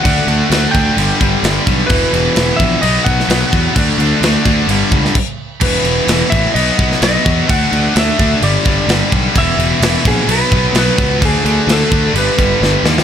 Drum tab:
CC |x-x-x-x-x-x-x-x-|x-x-x-x-x-x-x-x-|x-x-x-x-x-x-x---|x-x-x-x-x-x-x-x-|
SD |----o-------o---|----o------oo---|----o------o----|----o------oo---|
BD |o-----o---o---o-|o-----o---o---o-|o-----o---o-o---|o-----o---o---o-|

CC |x-x-x-x-x-x-x-x-|x-x-x-x-x-x-x-x-|x-x-x-x-x-x-----|
SD |----o-------o---|----o-------o---|----o-------o-oo|
BD |o-----o---o---o-|o-----o---o---o-|o-----o---o-----|